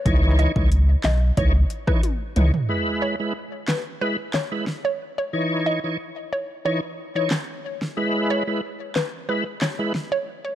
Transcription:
<<
  \new Staff \with { instrumentName = "Synth pluck" } { \time 4/4 \key e \major \tempo 4 = 91 r8 dis''16 r8. dis''16 r16 cis''16 r8 b'16 r4 | r8 cis''16 r8. b'16 r16 b'16 r16 cis''16 r8 cis''16 r16 cis''16 | r8 dis''16 r8. cis''16 r16 cis''16 r8 cis''16 r4 | r8 cis''16 r8. b'16 r16 b'16 r16 cis''16 r8 cis''16 r16 cis''16 | }
  \new Staff \with { instrumentName = "Tonewheel organ" } { \time 4/4 \key e \major <e dis' cis''>8. <e dis' cis''>16 r4 <e dis' cis''>16 r8 <e dis' cis''>16 r8 <e dis' cis''>16 r16 | <gis e' b'>8. <gis e' b'>16 r4 <gis e' b'>16 r8 <gis e' b'>16 r4 | <e dis' cis''>8. <e dis' cis''>16 r4 <e dis' cis''>16 r8 <e dis' cis''>16 r4 | <gis e' b'>8. <gis e' b'>16 r4 <gis e' b'>16 r8 <gis e' b'>16 r4 | }
  \new Staff \with { instrumentName = "Sub bass" } { \clef bass \time 4/4 \key e \major cis,8. cis,8. b,,8 cis,8 r4 cis,16 r16 | r1 | r1 | r1 | }
  \new DrumStaff \with { instrumentName = "Drums" } \drummode { \time 4/4 <hh bd>8 hh16 bd16 hh8 <hc hh sn>8 <hh bd>8 hh16 <bd ss>16 <hh tommh>8 <hh toml>16 tomfh16 | r4 r8 <hc sn>8 r8 <hc sn>8 sn4 | r4 r4 r4 <hc sn>8. sn16 | r4 r8 <hc sn>8 r8 <hc sn>8 sn4 | }
>>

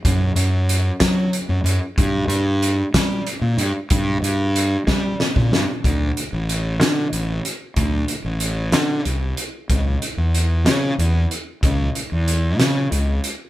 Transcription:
<<
  \new Staff \with { instrumentName = "Fingered electric bass" } { \clef bass \time 6/8 \key d \major \tempo 4. = 62 fis,8 fis,4 fis8 r16 fis,16 fis,16 r16 | g,8 g,4 g8 r16 bes,16 g,16 r16 | g,8 g,4 g8 r16 bes,16 g,16 r16 | d,8 r16 a,,8. d8 a,,8 r8 |
d,8 r16 a,,8. d8 c,8 r8 | cis,8 r16 e,8. cis8 e,8 r8 | cis,8 r16 e,8. cis8 cis,8 r8 | }
  \new DrumStaff \with { instrumentName = "Drums" } \drummode { \time 6/8 <hh bd>8 hh8 hh8 <hh bd sn>8 hh8 hh8 | <hh bd>8 hh8 hh8 <hh bd sn>8 hh8 hh8 | <hh bd>8 hh8 hh8 <bd sn>8 sn16 bd16 sn8 | <hh bd>8 hh8 hh8 <hh sn>8 hh8 hh8 |
<hh bd>8 hh8 hh8 <hh sn>8 hh8 hh8 | <hh bd>8 hh8 hh8 <hh sn>8 hh8 hh8 | <hh bd>8 hh8 hh8 <hh sn>8 hh8 hh8 | }
>>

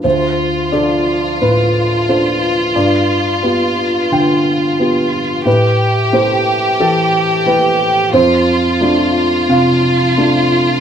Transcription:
<<
  \new Staff \with { instrumentName = "Felt piano" } { \time 4/4 \key d \dorian \tempo 4 = 89 << { c''4 d''4 b'4 c''4 | d''2 g''4. r8 | b'4 c''4 a'4 b'4 | c''2 f''4. r8 | } \\ { d,4 <d' f' a'>4 a,4 <d' f' a'>4 | g,4 <b f' g'>4 d4 <b f' g'>4 | a,4 <a e' g'>4 e4 <a e' g'>4 | f,4 <a d' f'>4 c4 <a d' f'>4 | } >> }
  \new Staff \with { instrumentName = "Violin section" } { \time 4/4 \key d \dorian f'1~ | f'1 | g'1 | f'1 | }
>>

